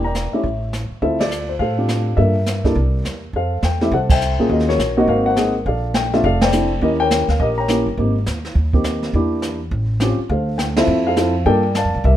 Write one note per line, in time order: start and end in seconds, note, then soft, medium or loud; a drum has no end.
0.00 0.29 E1 medium
0.00 0.30 A#4 medium
0.04 0.42 D5 medium
0.04 0.42 G5 medium
0.04 0.31 A#5 medium
0.15 snare soft
0.15 hi-hat pedal medium
0.32 0.43 A3 medium
0.32 0.43 C#4 medium
0.32 0.43 E4 medium
0.32 0.43 G4 medium
0.32 0.88 C#5 soft
0.32 0.70 E5 medium
0.32 muted upright bass stroke soft
0.43 0.87 A1 medium
0.43 brush sweep soft
0.43 kick soft
0.73 snare medium
0.73 hi-hat pedal medium
0.90 muted upright bass stroke soft
1.02 1.57 D2 medium
1.02 1.18 C4 medium
1.02 1.18 E4 medium
1.02 1.18 F4 medium
1.02 1.18 A4 medium
1.02 1.48 C5 medium
1.02 1.20 E5 medium
1.02 brush sweep soft
1.02 kick soft
1.20 1.75 F4 medium
1.20 1.61 A4 medium
1.20 1.50 D5 medium
1.20 snare medium
1.20 ride medium
1.31 hi-hat pedal medium
1.49 1.54 C5 medium
1.59 2.15 A2 medium
1.59 2.15 A4 medium
1.59 2.15 C5 medium
1.59 2.19 F5 medium
1.59 brush sweep soft
1.59 kick soft
1.78 2.16 C4 medium
1.78 2.16 D4 medium
1.78 2.16 F4 medium
1.78 2.16 G4 medium
1.89 snare medium
1.89 hi-hat pedal medium
2.17 2.73 G2 medium
2.17 2.34 A#3 medium
2.17 2.34 D4 medium
2.17 2.34 F4 soft
2.17 2.34 A4 medium
2.17 2.66 A#4 medium
2.17 2.66 E5 medium
2.17 brush sweep soft
2.17 kick soft
2.46 snare medium
2.46 hi-hat pedal medium
2.64 2.75 A#3 medium
2.64 2.75 D4 medium
2.64 2.75 E4 medium
2.64 3.20 G4 soft
2.64 2.75 A4 medium
2.64 3.20 A#4 soft
2.64 3.19 D5 medium
2.64 kick soft
2.64 snare soft
2.75 3.02 C2 medium
2.75 brush sweep soft
2.75 kick soft
3.04 3.31 E2 medium
3.04 snare soft
3.04 hi-hat pedal soft
3.33 3.60 F2 medium
3.33 3.89 A4 medium
3.33 3.89 C5 medium
3.33 3.62 F5 medium
3.33 brush sweep soft
3.33 kick soft
3.62 3.90 E2 medium
3.62 3.80 G5 medium
3.62 snare medium
3.62 hi-hat pedal soft
3.81 3.91 A3 medium
3.81 3.91 C4 medium
3.81 3.91 E4 medium
3.81 3.91 G4 medium
3.81 3.92 E5 medium
3.81 snare soft
3.91 4.35 C2 medium
3.91 4.47 A4 medium
3.91 4.10 C5 medium
3.91 3.99 F#5 medium
3.91 brush sweep soft
3.91 kick soft
4.10 4.48 C5 medium
4.10 4.48 E5 medium
4.10 4.48 G5 medium
4.10 kick medium
4.10 crash medium
4.21 hi-hat pedal medium
4.38 4.49 A#2 medium
4.38 4.77 A#3 medium
4.38 4.77 C#4 medium
4.38 4.77 F4 medium
4.38 4.77 G#4 medium
4.49 4.76 D#2 medium
4.49 4.68 F#4 medium
4.49 4.68 A#4 medium
4.49 4.67 D#5 medium
4.49 brush sweep soft
4.49 kick soft
4.60 snare soft
4.69 4.96 F#4 soft
4.69 5.06 A#4 soft
4.69 4.95 C#5 medium
4.69 snare soft
4.78 5.05 A#1 medium
4.78 snare medium
4.78 hi-hat pedal medium
4.97 5.35 A#3 medium
4.97 5.35 C4 medium
4.97 5.35 D#4 medium
4.97 5.35 F#4 medium
4.97 5.09 D#5 medium
5.07 5.63 G#1 medium
5.07 5.26 A#4 medium
5.07 5.26 C5 medium
5.07 5.27 F5 medium
5.07 brush sweep soft
5.07 kick soft
5.26 5.64 A#4 medium
5.26 5.64 C5 medium
5.26 5.53 F#5 medium
5.36 5.53 A#3 medium
5.36 5.53 C4 medium
5.36 5.53 D#4 medium
5.36 5.53 G#4 medium
5.36 snare medium
5.36 hi-hat pedal medium
5.65 6.21 A#1 medium
5.65 6.21 A4 medium
5.65 6.21 D5 medium
5.65 5.96 F5 medium
5.65 brush sweep soft
5.65 kick soft
5.94 6.11 G5 medium
5.94 snare medium
5.94 hi-hat pedal medium
6.13 6.23 A3 medium
6.13 6.23 C4 medium
6.13 6.23 D4 medium
6.13 6.23 F4 medium
6.13 6.23 E5 medium
6.13 snare soft
6.24 6.79 F1 medium
6.24 6.79 A4 medium
6.24 6.43 D5 medium
6.24 6.42 F5 loud
6.24 brush sweep soft
6.24 kick soft
6.41 6.80 C5 medium
6.41 6.80 D5 medium
6.41 6.79 G5 medium
6.41 snare medium
6.41 ride medium
6.52 6.69 A3 medium
6.52 6.69 C4 medium
6.52 6.69 D4 medium
6.52 6.69 E4 medium
6.52 hi-hat pedal medium
6.81 7.25 D#2 medium
6.81 7.25 A#3 medium
6.81 7.25 C#4 medium
6.81 7.25 E4 medium
6.81 7.25 G4 medium
6.81 7.01 A#4 medium
6.81 6.87 D#5 medium
6.81 brush sweep soft
6.81 kick soft
7.00 7.40 A#4 medium
7.00 7.55 C#5 medium
7.00 7.27 G5 loud
7.11 snare medium
7.11 hi-hat pedal medium
7.28 7.39 D2 medium
7.28 7.40 F5 medium
7.28 snare soft
7.39 7.83 A#1 medium
7.39 7.68 G4 medium
7.39 7.95 A#4 medium
7.39 7.45 D#5 medium
7.39 brush sweep soft
7.39 kick soft
7.58 7.96 C#5 medium
7.58 7.96 G5 medium
7.58 7.85 A#5 medium
7.68 7.85 A#3 medium
7.68 7.85 C#4 medium
7.68 7.85 E4 medium
7.68 7.85 G4 medium
7.68 snare medium
7.68 hi-hat pedal medium
7.86 7.97 G1 medium
7.97 8.24 G#1 medium
7.97 8.14 A#3 medium
7.97 8.14 C4 medium
7.97 8.15 D#4 medium
7.97 8.15 G4 medium
7.97 brush sweep soft
7.97 kick soft
8.26 8.54 D#2 medium
8.26 snare medium
8.26 hi-hat pedal medium
8.45 snare soft
8.55 9.10 D#2 medium
8.55 brush sweep medium
8.55 kick soft
8.73 9.12 A#3 medium
8.73 9.12 C4 medium
8.73 9.12 D#4 medium
8.73 9.12 G4 medium
8.73 kick medium
8.84 snare medium
8.84 hi-hat pedal medium
9.03 snare soft
9.13 9.69 E2 medium
9.13 9.58 A#3 medium
9.13 9.58 D4 medium
9.13 9.58 E4 medium
9.13 9.58 G4 medium
9.13 brush sweep soft
9.13 kick soft
9.42 snare medium
9.42 hi-hat pedal medium
9.71 10.15 A1 medium
9.71 brush sweep medium
9.71 kick soft
10.00 10.17 C4 medium
10.00 10.17 C#4 medium
10.00 10.17 F4 medium
10.00 10.18 G4 medium
10.00 snare medium
10.00 hi-hat pedal medium
10.18 muted upright bass stroke soft
10.29 10.85 D2 medium
10.29 10.76 A4 medium
10.29 10.78 C5 medium
10.29 10.57 F5 medium
10.29 brush sweep soft
10.29 kick soft
10.58 10.63 G5 medium
10.58 snare medium
10.58 hi-hat pedal medium
10.76 11.15 C4 medium
10.76 11.15 E4 medium
10.76 11.15 F4 medium
10.76 11.07 A4 medium
10.76 11.07 C5 medium
10.76 11.07 E5 medium
10.76 snare medium
10.76 ride medium
10.87 11.43 F2 medium
10.87 brush sweep medium
11.07 11.16 A4 medium
11.07 11.44 C5 medium
11.07 11.44 F5 medium
11.16 11.33 C4 medium
11.16 11.33 E4 medium
11.16 11.33 F4 medium
11.16 11.34 A4 medium
11.16 snare medium
11.16 hi-hat pedal medium
11.46 11.82 G2 medium
11.46 11.62 A#3 medium
11.46 11.62 D4 medium
11.46 11.62 F4 medium
11.46 11.62 A4 medium
11.46 12.01 A#4 medium
11.46 11.76 D5 medium
11.46 11.73 G5 medium
11.46 brush sweep soft
11.46 kick soft
11.75 12.04 D5 medium
11.75 12.03 F5 medium
11.75 12.03 A5 medium
11.75 snare medium
11.75 hi-hat pedal medium
11.85 11.94 F2 medium
11.95 12.03 B1 medium
12.04 12.17 C2 medium
12.04 12.17 G4 medium
12.04 12.17 A#4 medium
12.04 12.17 E5 medium